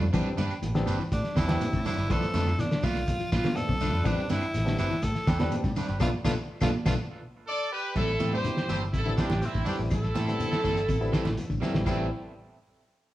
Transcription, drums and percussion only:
0.01 low conga, shekere
0.14 kick, snare, closed hi-hat, low conga, claves, shekere
0.26 shekere
0.38 snare, closed hi-hat, high conga, shekere
0.51 closed hi-hat, claves, shekere
0.63 closed hi-hat, high conga, shekere
0.75 snare, closed hi-hat, high conga, shekere
0.87 closed hi-hat, high conga, claves, shekere
1.00 shekere
1.12 kick, closed hi-hat, shekere
1.24 snare, closed hi-hat, shekere
1.37 kick, snare, closed hi-hat, claves, shekere
1.49 snare, closed hi-hat, high conga, shekere
1.61 closed hi-hat, high conga, shekere
1.73 kick, closed hi-hat, shekere
1.85 open hi-hat, low conga, claves, shekere
1.98 closed hi-hat, shekere
2.09 kick, snare, closed hi-hat, low conga, claves, shekere
2.22 snare, closed hi-hat, shekere
2.34 snare, closed hi-hat, high conga, shekere
2.46 snare, low conga, claves, shekere
2.59 snare, closed hi-hat, shekere
2.71 snare, closed hi-hat, shekere
2.83 kick, open hi-hat, high conga, claves, shekere
2.95 snare, closed hi-hat, shekere
3.07 kick, closed hi-hat, shekere
3.20 closed hi-hat, shekere
3.32 kick, snare, closed hi-hat, claves, shekere
3.44 snare, closed hi-hat, high conga, shekere
3.56 closed hi-hat, high conga, shekere
3.69 kick, high conga, shekere
3.80 closed hi-hat, low conga, claves, shekere
3.93 shekere
4.05 kick, closed hi-hat, low conga, claves, shekere
4.18 shekere
4.29 snare, closed hi-hat, high conga, shekere
4.42 closed hi-hat, claves, shekere
4.54 snare, closed hi-hat, shekere
4.66 snare, closed hi-hat, shekere
4.78 closed hi-hat, high conga, claves, shekere
4.90 snare, shekere
5.02 kick, closed hi-hat, shekere
5.15 snare, closed hi-hat, shekere
5.27 kick, snare, closed hi-hat, claves, shekere
5.40 snare, closed hi-hat, high conga, shekere
5.51 closed hi-hat, high conga, shekere
5.64 kick, closed hi-hat, high conga, shekere
5.76 open hi-hat, low conga, claves, shekere
5.88 closed hi-hat, shekere
6.00 kick, snare, high conga, claves, shekere
6.24 kick, snare, high conga, claves, shekere
6.61 kick, snare, high conga, claves, shekere
6.85 kick, snare, high conga, claves, shekere
7.95 kick, closed hi-hat, low conga, claves, shekere
8.08 shekere
8.20 snare, closed hi-hat, high conga, shekere
8.32 low conga, claves, shekere
8.44 closed hi-hat, high conga, shekere
8.57 snare, shekere
8.69 closed hi-hat, high conga, claves, shekere
8.81 shekere
8.94 kick, closed hi-hat, shekere
9.06 snare, shekere
9.18 kick, snare, closed hi-hat, claves, shekere
9.30 snare, high conga, shekere
9.42 snare, closed hi-hat, high conga, shekere
9.54 kick, high conga, shekere
9.66 open hi-hat, low conga, claves, shekere
9.79 shekere
9.91 kick, closed hi-hat, low conga, claves, shekere
10.03 snare, shekere
10.15 snare, closed hi-hat, high conga, shekere
10.27 snare, closed hi-hat, claves, shekere
10.40 closed hi-hat, high conga, shekere
10.51 snare, high conga, shekere
10.64 kick, open hi-hat, high conga, claves, shekere
10.77 closed hi-hat, shekere
10.88 kick, closed hi-hat, shekere
11.01 shekere
11.13 kick, snare, closed hi-hat, claves, shekere
11.25 snare, high conga, shekere
11.37 closed hi-hat, high conga, shekere
11.50 kick, shekere
11.62 snare, low conga, claves, shekere
11.74 snare, high conga, shekere
11.86 kick, crash, low conga, claves, shekere

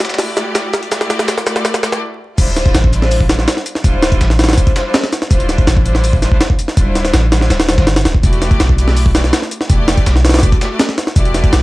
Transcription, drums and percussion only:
0.00 snare, closed hi-hat, shaker
0.05 snare, shaker
0.10 snare, shaker
0.14 snare, shaker
0.18 snare, open hi-hat, shaker
0.37 snare, closed hi-hat, shaker
0.55 snare, closed hi-hat, shaker
0.73 snare, closed hi-hat, shaker
0.83 closed hi-hat
0.91 snare, closed hi-hat, shaker
1.01 snare
1.10 snare, closed hi-hat, shaker
1.19 snare
1.28 snare, closed hi-hat, shaker
1.38 snare
1.46 snare, closed hi-hat, shaker
1.56 snare
1.65 snare, closed hi-hat, shaker
1.74 snare, shaker
1.83 snare, closed hi-hat, shaker
1.92 snare, shaker
2.38 kick, closed hi-hat, crash, shaker
2.48 closed hi-hat
2.56 snare, closed hi-hat, shaker
2.66 kick, closed hi-hat
2.75 snare, closed hi-hat, shaker
2.84 kick
2.93 closed hi-hat, shaker
3.02 snare
3.11 open hi-hat, shaker
3.21 kick
3.29 snare, closed hi-hat, shaker
3.39 snare
3.48 snare, closed hi-hat, shaker
3.57 snare
3.66 closed hi-hat, shaker
3.75 snare
3.84 kick, closed hi-hat, shaker
4.03 snare, closed hi-hat, shaker
4.12 kick, closed hi-hat
4.21 snare, closed hi-hat, shaker
4.30 snare
4.39 snare, closed hi-hat, shaker
4.44 snare, closed hi-hat
4.49 snare, closed hi-hat
4.53 snare, closed hi-hat
4.58 kick, closed hi-hat, shaker
4.67 kick, closed hi-hat
4.76 snare, closed hi-hat, shaker
4.94 snare, closed hi-hat, shaker
5.03 snare, closed hi-hat
5.12 snare, closed hi-hat, shaker
5.22 snare
5.31 kick, closed hi-hat, shaker
5.40 closed hi-hat
5.49 snare, closed hi-hat, shaker
5.58 kick, closed hi-hat
5.67 snare, closed hi-hat, shaker
5.77 kick
5.86 closed hi-hat, shaker
5.95 snare
6.04 open hi-hat, shaker
6.13 kick
6.22 snare, closed hi-hat, shaker
6.32 kick
6.41 snare, closed hi-hat, shaker
6.50 kick
6.59 closed hi-hat, shaker
6.68 snare
6.77 kick, closed hi-hat, shaker
6.95 snare, closed hi-hat, shaker
7.05 snare, closed hi-hat
7.14 snare, closed hi-hat, shaker
7.32 snare, closed hi-hat, shaker
7.41 snare
7.50 snare, closed hi-hat, shaker
7.60 snare, closed hi-hat
7.69 snare, closed hi-hat, shaker
7.78 kick, snare, shaker
7.87 snare, closed hi-hat
7.96 snare, closed hi-hat, shaker
8.05 snare, closed hi-hat, shaker
8.14 kick
8.23 kick, closed hi-hat, shaker
8.33 closed hi-hat
8.42 snare, closed hi-hat, shaker
8.51 kick, closed hi-hat
8.60 snare, closed hi-hat, shaker
8.69 kick
8.78 closed hi-hat, shaker
8.88 snare
8.97 open hi-hat, shaker
9.06 kick
9.15 snare, closed hi-hat, shaker
9.24 snare
9.33 snare, closed hi-hat, shaker
9.42 snare
9.51 closed hi-hat, shaker
9.61 snare
9.70 kick, closed hi-hat, shaker
9.88 snare, closed hi-hat, shaker
9.97 kick, closed hi-hat
10.06 snare, closed hi-hat, shaker
10.16 snare
10.25 snare, closed hi-hat, shaker
10.29 snare, closed hi-hat
10.34 snare, closed hi-hat
10.39 snare, closed hi-hat
10.43 kick, closed hi-hat, shaker
10.52 kick, closed hi-hat
10.61 snare, closed hi-hat, shaker
10.80 snare, closed hi-hat, shaker
10.89 snare, closed hi-hat
10.98 snare, closed hi-hat, shaker
11.07 snare
11.16 kick, closed hi-hat, shaker
11.25 closed hi-hat
11.34 snare, closed hi-hat, shaker
11.44 kick, closed hi-hat
11.53 snare, closed hi-hat, shaker

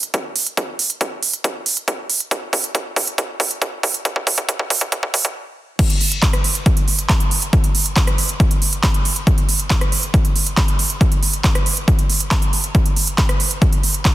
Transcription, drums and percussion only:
0.03 closed hi-hat
0.14 kick, closed hi-hat
0.36 open hi-hat
0.47 closed hi-hat
0.57 kick, closed hi-hat
0.79 open hi-hat
0.90 closed hi-hat
1.01 kick, closed hi-hat
1.23 open hi-hat
1.33 closed hi-hat
1.44 kick, closed hi-hat
1.66 open hi-hat
1.77 closed hi-hat
1.88 kick, closed hi-hat
2.10 open hi-hat
2.20 closed hi-hat
2.31 kick, closed hi-hat
2.53 kick, open hi-hat
2.64 closed hi-hat
2.75 kick, closed hi-hat
2.96 kick, open hi-hat
3.07 closed hi-hat
3.18 kick, closed hi-hat
3.40 kick, open hi-hat
3.51 closed hi-hat
3.62 kick, closed hi-hat
3.83 kick, open hi-hat
3.94 closed hi-hat
4.05 kick, closed hi-hat
4.16 kick
4.27 kick, open hi-hat
4.38 kick, closed hi-hat
4.49 kick, closed hi-hat
4.59 kick
4.70 kick, open hi-hat
4.81 kick, closed hi-hat
4.92 kick, closed hi-hat
5.03 kick
5.14 kick, open hi-hat
5.25 kick, closed hi-hat
5.79 kick, closed hi-hat, crash
5.90 closed hi-hat
6.01 open hi-hat
6.12 closed hi-hat
6.23 kick, clap, closed hi-hat
6.33 cross-stick, closed hi-hat
6.44 open hi-hat
6.55 closed hi-hat
6.66 kick, closed hi-hat
6.77 closed hi-hat
6.88 open hi-hat
6.99 closed hi-hat
7.09 kick, clap, closed hi-hat
7.20 closed hi-hat
7.31 open hi-hat
7.42 closed hi-hat
7.53 kick, closed hi-hat
7.64 closed hi-hat
7.75 open hi-hat
7.86 closed hi-hat
7.96 kick, clap, closed hi-hat
8.07 cross-stick, closed hi-hat
8.18 open hi-hat
8.29 closed hi-hat
8.40 kick, closed hi-hat
8.51 closed hi-hat
8.62 open hi-hat
8.73 closed hi-hat
8.83 kick, clap, closed hi-hat
8.94 closed hi-hat
9.05 open hi-hat
9.16 closed hi-hat
9.27 kick, closed hi-hat
9.38 closed hi-hat
9.49 open hi-hat
9.60 closed hi-hat
9.70 kick, clap, closed hi-hat
9.81 cross-stick, closed hi-hat
9.92 open hi-hat
10.03 closed hi-hat
10.14 kick, closed hi-hat
10.25 closed hi-hat
10.36 open hi-hat
10.47 closed hi-hat
10.57 kick, clap, closed hi-hat
10.68 closed hi-hat
10.79 open hi-hat
10.90 closed hi-hat
11.01 kick, closed hi-hat
11.12 closed hi-hat
11.23 open hi-hat
11.33 closed hi-hat
11.44 kick, clap, closed hi-hat
11.55 cross-stick, closed hi-hat
11.66 open hi-hat
11.77 closed hi-hat
11.88 kick, closed hi-hat
11.99 closed hi-hat
12.10 open hi-hat
12.20 closed hi-hat
12.31 kick, clap, closed hi-hat
12.42 closed hi-hat
12.53 open hi-hat
12.64 closed hi-hat
12.75 kick, closed hi-hat
12.86 closed hi-hat
12.96 open hi-hat
13.07 closed hi-hat
13.18 kick, clap, closed hi-hat
13.29 cross-stick, closed hi-hat
13.40 open hi-hat
13.51 closed hi-hat
13.62 kick, closed hi-hat
13.73 closed hi-hat
13.83 open hi-hat
13.94 closed hi-hat
14.05 kick, clap, closed hi-hat

